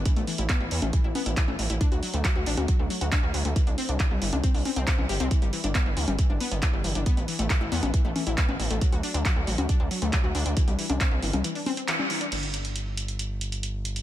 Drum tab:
CC |----------------|----------------|----------------|----------------|
HH |xxoxx-oxx-oxx-ox|xxoxx-oxx-oxx-ox|xxoxx-oxxooxx-ox|xxoxx-oxx-oxx-ox|
CP |----x-------x---|----x-------x---|----x-------x---|----x-------x---|
CG |-------o--o--o--|-------o--------|-------o--o--o--|-------o--------|
BD |o---o---o---o---|o---o---o---o---|o---o---o---o---|o---o---o---o---|

CC |----------------|----------------|----------------|x---------------|
HH |xxoxx-oxx-oxx-ox|xxoxx-oxx-oxx-ox|xxoxx-oxxooxx-ox|xxxxx-xxx-xxx-xx|
CP |----x-------x---|----x-------x---|----x-------x---|----------------|
CG |-------o--o--o--|-------o--------|---o---o--o--o--|----------------|
BD |o---o---o---o---|o---o---o---o---|o---o-----------|----------------|